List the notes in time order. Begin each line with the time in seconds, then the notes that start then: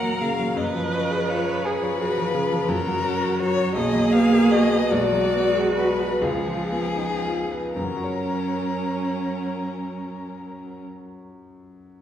Already playing: F#2 F#3 A#3 C#4 F#4 A#4 C#5 F#5 A#5
0.03 F#3
0.21 C#3 F5
0.39 F#3
0.56 F#2 F3 B4 D#5
0.75 F3
0.92 C#4
1.10 G#4
1.28 F4 C#5
1.46 C#5
1.65 G#4 B4 G#5
1.83 C#5
1.99 F#4 G#4
2.18 F3
2.35 C#3 F4
2.52 F3
2.68 F#2 F#3 F#4 A#4
2.87 F#3
3.04 C#4
3.21 A#4
3.39 F#4 C#5
3.57 C#5
3.75 B1 A#3 G#4 D#5
3.94 F#3
4.13 B3 F5
4.32 A#4
4.51 F#4 D#5
4.71 B4
4.91 B1 G#3 F#4 D5
5.12 F#3
5.34 B3
5.55 G#4
5.76 F#4 B4
5.99 B4
6.21 C#2 F3 F4 G#4
6.46 F3
6.71 B3
6.96 D#4
7.25 F4
7.52 B4
7.73 F#2 F#3 C#4 A#4
7.83 F#3
7.90 C#4
7.97 F#4
8.04 C#5